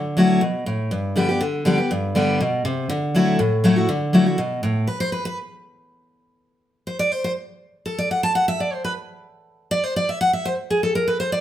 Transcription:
0.00 0.39 D3 medium
0.17 0.40 F#3 medium
0.17 0.41 A3 medium
0.17 0.41 E4 medium
0.17 0.41 F#4 loud
0.41 0.65 B2 medium
0.66 0.90 A2 medium
0.91 1.38 G2 medium
1.16 1.28 D3 medium
1.16 1.28 G3 medium
1.16 1.29 B3 medium
1.16 1.27 G4 medium
1.29 1.41 B3 soft
1.29 1.40 G4 medium
1.41 1.64 D3 medium
1.65 1.78 D3 medium
1.65 1.78 G3 medium
1.65 1.78 B3 medium
1.65 1.76 G4 medium
1.78 1.91 B3 medium
1.78 1.90 G4 medium
1.91 2.38 G2 medium
2.15 2.39 D3 medium
2.15 2.39 G3 medium
2.15 2.39 B3 medium
2.15 2.40 G4 medium
2.41 2.64 B2 medium
2.65 2.88 C3 medium
2.89 3.37 D3 medium
3.15 3.38 F#3 medium
3.15 3.39 A3 medium
3.15 3.39 E4 loud
3.15 3.39 F#4 medium
3.39 3.86 A2 medium
3.64 3.76 F#3 medium
3.64 3.76 A3 medium
3.64 3.77 E4 medium
3.64 3.75 F#4 medium
3.76 3.89 E4 medium
3.76 3.88 F#4 medium
3.89 4.36 D3 loud
4.13 4.26 F#3 medium
4.13 4.26 A3 medium
4.13 4.26 E4 loud
4.13 4.25 F#4 loud
4.26 4.39 E4 medium
4.26 4.38 F#4 medium
4.38 4.62 B2 medium
4.63 4.87 A2 medium
4.87 5.00 B4 medium
5.00 5.12 C5 loud
5.12 5.24 B4 medium
5.25 5.37 B4 loud
6.87 6.99 C5 medium
6.99 7.12 D5 loud
7.12 7.23 C5 medium
7.24 7.31 C5 loud
7.86 7.98 A4 medium
7.98 8.10 D5 loud
8.11 8.23 F#5 medium
8.23 8.35 A5 loud
8.35 8.47 F#5 medium
8.48 8.60 E5 medium
8.60 8.73 D5 medium
8.73 8.84 C5 medium
8.84 8.92 B4 medium
9.71 9.84 D5 loud
9.84 9.96 C5 medium
9.96 10.08 D5 loud
10.09 10.20 E5 medium
10.21 10.33 F#5 loud
10.33 10.46 E5 medium
10.45 10.53 C5 loud
10.70 10.82 G#4 medium
10.83 10.95 A4 medium
10.95 11.07 A#4 medium
11.08 11.19 B4 medium
11.20 11.32 C5 loud
11.32 11.41 D5 medium

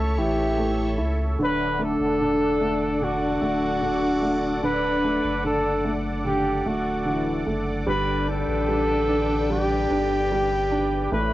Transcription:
0.00 0.19 C#2 loud
0.00 0.57 A3 medium
0.00 0.18 E4 medium
0.00 0.20 A4 medium
0.00 7.83 A4 medium
0.00 1.36 C#5 medium
0.00 1.36 E5 medium
0.00 1.36 C#6 medium
0.17 1.00 A1 loud
0.17 0.96 E3 medium
0.17 0.96 E4 medium
0.17 0.99 G4 medium
0.57 1.36 A3 medium
0.98 1.36 C#2 medium
0.98 1.37 E4 medium
1.39 1.96 D1 loud
1.39 2.20 D3 medium
1.39 6.62 D3 medium
1.39 6.62 D4 medium
1.39 11.08 D5 medium
1.39 7.84 F#5 medium
1.39 11.08 D6 medium
1.44 1.85 B4 loud
1.79 2.59 A3 medium
1.83 3.05 A4 loud
2.00 3.38 E1 medium
2.21 3.00 D3 soft
2.61 3.40 A3 medium
3.01 3.81 D3 medium
3.01 4.64 F#4 loud
3.41 4.59 D1 medium
3.41 4.21 A3 medium
3.82 4.61 D3 medium
4.22 5.03 A3 medium
4.63 5.20 D1 loud
4.63 5.43 D3 medium
4.63 5.41 B4 loud
5.04 5.83 A3 medium
5.24 6.62 F#1 medium
5.44 6.23 D3 medium
5.44 5.95 A4 medium
5.85 6.64 A3 medium
6.25 7.04 D3 medium
6.25 6.69 G4 medium
6.65 7.42 D1 loud
6.65 7.45 A3 medium
6.65 7.48 F#4 medium
7.05 7.84 D3 medium
7.05 7.46 E3 medium
7.05 7.46 E4 medium
7.46 7.84 F#1 medium
7.46 7.86 A3 medium
7.86 8.44 G1 loud
7.86 10.66 D3 medium
7.86 8.67 G3 medium
7.86 10.67 D4 medium
7.86 11.08 B4 medium
7.86 8.26 B4 loud
7.86 11.07 G5 medium
8.28 9.07 D4 medium
8.28 9.47 A4 loud
8.48 9.86 A1 medium
8.68 9.48 G3 medium
9.09 9.89 D4 medium
9.50 10.30 G3 medium
9.50 11.09 G4 loud
9.90 11.08 G1 medium
9.90 10.70 D4 medium
10.31 11.10 G3 medium
10.72 11.11 D4 medium
11.11 11.33 A1 loud
11.11 11.33 E3 medium
11.11 11.33 A3 medium
11.11 11.33 E4 medium
11.11 11.33 A4 medium
11.11 11.33 B4 medium
11.11 11.33 C#5 medium
11.11 11.33 E5 medium
11.11 11.33 C#6 medium

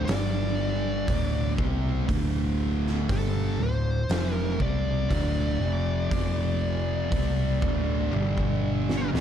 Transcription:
0.05 1.04 G1 medium
0.05 1.06 G2 medium
0.05 1.06 D3 medium
0.05 1.07 G3 loud
0.05 1.53 D5 medium
0.05 open hi-hat medium
0.09 snare loud
1.07 1.55 D1 medium
1.07 1.56 D2 medium
1.07 1.56 A2 loud
1.07 1.57 D3 loud
1.07 kick loud
1.07 open hi-hat medium
1.57 2.05 C2 medium
1.57 2.06 C3 medium
1.57 2.07 G3 medium
1.57 2.07 C4 loud
1.57 kick loud
2.08 3.05 D1 medium
2.08 3.07 D2 loud
2.08 3.07 A2 loud
2.08 3.08 D3 loud
2.08 kick loud
2.08 open hi-hat medium
2.87 snare soft
3.09 3.56 G1 medium
3.09 3.58 G2 medium
3.09 3.58 D3 medium
3.09 3.58 G3 loud
3.09 3.62 A4 medium
3.09 kick loud
3.09 open hi-hat medium
3.59 4.06 D1 medium
3.59 3.99 D2 medium
3.59 4.00 A2 medium
3.59 4.33 C5 medium
4.09 4.56 F1 medium
4.09 4.58 F2 medium
4.09 4.59 C3 medium
4.09 4.59 F3 loud
4.09 snare loud
4.09 open hi-hat medium
4.33 4.62 A#4 medium
4.60 5.07 C2 loud
4.60 5.09 C3 medium
4.60 5.09 G3 loud
4.60 5.09 C4 loud
4.60 9.10 D5 medium
4.60 kick loud
5.09 5.57 D1 loud
5.09 5.58 D2 medium
5.09 5.59 A2 medium
5.09 5.59 D3 medium
5.09 kick loud
5.09 open hi-hat medium
5.59 6.07 F1 medium
5.59 6.09 F2 medium
5.59 6.09 C3 medium
5.59 6.09 F3 loud
6.11 7.07 F1 medium
6.11 7.10 F2 medium
6.11 7.10 C3 loud
6.11 7.10 F3 loud
6.11 kick loud
6.11 open hi-hat medium
7.11 7.58 C2 loud
7.11 7.60 C3 medium
7.11 7.60 G3 loud
7.11 7.61 C4 medium
7.11 kick loud
7.11 open hi-hat medium
7.61 8.09 D1 medium
7.61 8.11 D2 medium
7.61 8.12 A2 medium
7.61 8.12 D3 loud
7.61 kick loud
8.11 9.09 G1 loud
8.11 9.11 G2 medium
8.11 9.11 D3 loud
8.11 9.11 G3 loud
8.11 high tom medium
8.38 kick medium
8.89 snare medium
9.12 9.21 D1 medium
9.12 9.21 D2 loud
9.12 9.21 A2 loud
9.12 9.21 D3 loud
9.12 snare medium

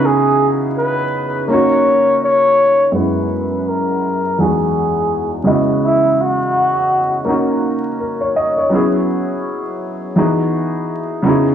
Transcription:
0.00 1.44 C#3 medium
0.00 1.45 B3 medium
0.00 1.45 D#4 medium
0.00 1.46 E4 medium
0.00 1.46 F#4 medium
0.00 1.47 G#4 medium
0.05 0.52 G#4 medium
0.78 1.45 B4 medium
1.48 2.90 A#3 medium
1.48 2.91 C#4 medium
1.48 2.92 D#4 medium
1.48 2.18 C#5 medium
1.54 2.93 F#4 medium
2.23 2.90 C#5 loud
2.92 4.34 F#2 medium
2.92 4.35 G#3 medium
2.92 4.36 B3 soft
2.92 3.70 B4 medium
2.96 4.36 C#4 soft
2.96 4.37 E4 medium
3.68 4.42 A#4 medium
4.38 5.46 E2 medium
4.38 4.46 F#3 soft
4.38 5.45 B3 soft
4.38 5.48 D#4 medium
4.38 5.48 F#4 medium
4.38 5.47 G#4 medium
4.46 5.44 G#3 soft
5.44 7.22 C#3 medium
5.44 7.23 G#3 medium
5.44 7.23 B3 medium
5.44 7.24 D#5 medium
5.49 7.24 E4 medium
5.49 7.25 F#4 medium
5.84 6.23 E4 medium
6.21 7.64 F#4 loud
7.25 8.67 A#3 medium
7.25 8.69 C#4 medium
7.25 8.69 D#4 medium
7.30 8.70 F#4 medium
8.00 8.20 A#4 medium
8.21 8.35 C#5 medium
8.36 8.56 D#5 medium
8.58 8.92 C#5 medium
8.70 10.12 F#3 medium
8.70 10.13 B3 medium
8.70 10.14 C#4 medium
8.74 10.14 E4 medium
8.74 10.15 G#4 medium
10.16 11.24 E3 medium
10.16 11.22 B3 medium
10.16 11.23 D#4 medium
10.16 11.25 F#4 medium
10.16 11.26 G#4 medium
11.22 11.55 C#3 medium
11.22 11.55 B3 medium
11.22 11.55 D#4 medium
11.22 11.55 E4 medium
11.27 11.55 F#4 medium
11.27 11.55 G#4 medium

